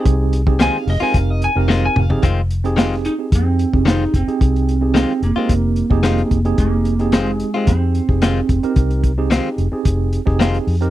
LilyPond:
<<
  \new Staff \with { instrumentName = "Lead electric guitar" } { \time 4/4 \key f \minor \tempo 4 = 110 r4 aes''16 f''16 ees''16 aes''16 f''16 ees''16 aes''16 f''16 ees''16 aes''16 f''8 | r4. ees'8 c'4 ees'8 c'8~ | c'4 c'8 bes2~ bes8 | bes4 aes4 c'2 |
r1 | }
  \new Staff \with { instrumentName = "Tine electric piano" } { \time 4/4 \key f \minor <c' ees' g' aes'>8. <c' ees' g' aes'>4 <c' ees' g' bes'>4 <c' ees' g' bes'>4 <c' ees' g' aes'>16 | r8. <c' ees' g' aes'>4 <c' ees' g' aes'>4 <c' ees' g' aes'>4 <c' ees' g' aes'>16~ | <c' ees' g' aes'>8. <c' ees' g' aes'>4 <c' ees' g' bes'>4 <c' ees' g' aes'>4 <c' ees' g' aes'>16~ | <c' ees' g' aes'>8. <c' ees' g' aes'>4 <c' ees' g' aes'>4 <c' ees' g' aes'>4 <c' ees' g' bes'>16~ |
<c' ees' g' bes'>8. <c' ees' g' aes'>4 <c' ees' g' aes'>4 <c' ees' g' aes'>4 <c' ees' g' bes'>16 | }
  \new Staff \with { instrumentName = "Clean electric guitar" } { \time 4/4 \key f \minor r4 <ees aes c' f'>16 r8 <aes c' f'>16 r4 <ees aes c' f'>16 r8. | <ees aes c' f'>16 r8. <ees aes c' f'>16 r4. r16 <ees aes c' f'>16 r8. | r4 <ees aes c' f'>16 r8 <aes c' f'>16 r4 <ees aes c' f'>16 r8. | r4 <ees aes c' f'>16 r8 <aes c' f'>16 r4 <ees aes c' f'>16 r8. |
r4 <ees aes c' f'>16 r4. r16 <ees aes c' f'>16 r8. | }
  \new Staff \with { instrumentName = "Fingered electric bass" } { \clef bass \time 4/4 \key f \minor c,4. f,,16 r16 f,,8. f,,8. f,,8 | f,,2 f,8. f,,8. f,,16 r16 | c,4. f,,16 r16 f,,8. f,,8. f,,8 | f,,2 f,8. f,,8. f,,16 r16 |
c,4. f,,16 r16 f,,8. f,,8. f,8 | }
  \new DrumStaff \with { instrumentName = "Drums" } \drummode { \time 4/4 <hh bd>8 hh16 bd16 <hh sn>8 <hho sn>8 <hh bd>8 hh8 sn8 toml16 tomfh16 | <hh bd>8 hh16 hh16 <hh sn>16 sn16 hh8 <hh bd>8 hh16 bd16 <hh sn>8 <hh bd>16 hh16 | <hh bd>16 hh16 hh8 <hh sn>8 hh8 <hh bd>8 hh16 bd16 <hh sn>16 hh16 <hh bd>16 hh16 | <hh bd>8 hh16 hh16 <hh sn>8 hh8 <hh bd>8 hh16 bd16 <hh sn>8 <hh bd>16 hh16 |
<hh bd>16 hh16 <hh bd>8 <hh sn>8 hh8 <hh bd>8 hh16 bd16 <hh sn>16 hh16 hho16 hh16 | }
>>